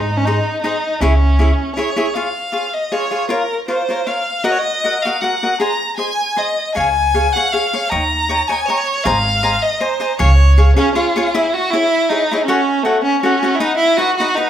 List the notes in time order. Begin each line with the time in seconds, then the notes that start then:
Already playing: G#2 D#4
0.17 C#4
0.25 D#4 G#4 C5 D#5
0.62 D#4 G#4 C5 D#5
1.00 C#2 C#4 E4 G#4 C#5 E5
1.39 E4 G#4 C#5 E5
1.75 E4 G#4 C#5 E5
1.96 E4 G#4 C#5 E5
2.14 F4 G#4 C#5 F5
2.52 F4 G#4 C#5 F5
2.74 D#5
2.92 F4 G#4 C#5 F5
3.11 F4 G#4 C#5 F5
3.29 F4 A#4 C#5 F5
3.68 F4 A#4 C5 C#5 F5
3.89 F4 A#4 C#5 F5
4.07 F4 A#4 C#5 F5
4.44 F#4 A#4 D#5 F#5
4.51 C#5
4.58 D#5
4.84 F#4 A#4 D#5 F#5
5.02 F#4 A#4 F5
5.07 D#5 F#5
5.21 F#4 A#4 D#5 F#5
5.43 F#4 A#4 D#5 F#5
5.60 G#4 C5 D#5 G#5 A#5
5.96 G#4 C5 D#5 G#5
6.36 G#4 C5 D#5 G#5
6.75 C#2 G#4 C#5 F5 G#5
7.14 G#4 C#5 F5 G#5
7.32 G#4 C#5 F#5
7.37 F5 G#5
7.52 G#4 C#5 F5 G#5
7.73 G#4 C#5 F5 G#5
7.89 D#2 C#5 D#5 G5 A#5
8.29 C#5 D#5 G5 A#5
8.48 C#5 D#5 G5 G#5 A#5
8.66 C#5 D#5 G5 A#5
9.04 G#1 C5 D#5 F5 G#5 A#5
9.43 C5 D#5 G#5 A#5
9.62 D#5
9.80 C5 D#5 G#5 A#5
10.00 C5 D#5 G#5 A#5
10.19 C#2 G#4 C#5 F5 G#5
10.58 G#4 C#5 F5 G#5
10.76 C#4 G#4 C#5 F5 G#5
10.95 F4 G#4 C#5 F5 G#5
11.16 G#4 C#5 F5 G#5
11.34 E4 G#4 C#5 E5
11.53 F#4
11.71 E4 G#4 C#5 E5
12.09 D#4 E4 G#4 C#5 E5
12.31 E4 G#4 C#5 E5
12.45 C#4 F#4 A4 C#5 F#5
12.83 A3 F#4 A4 C#5 F#5
13.03 C#4
13.22 C#4 F#4 A4 C#5 F#5
13.43 F#4 A4 C#5 F#5
13.55 E4
13.59 D#4 B4 D#5 F#5
13.77 E4
13.97 D#4 F#4 B4 D#5 F#5
14.16 D#4 F#4
14.20 B4 D#5 F#5
14.35 D#4 B4 D#5 F#5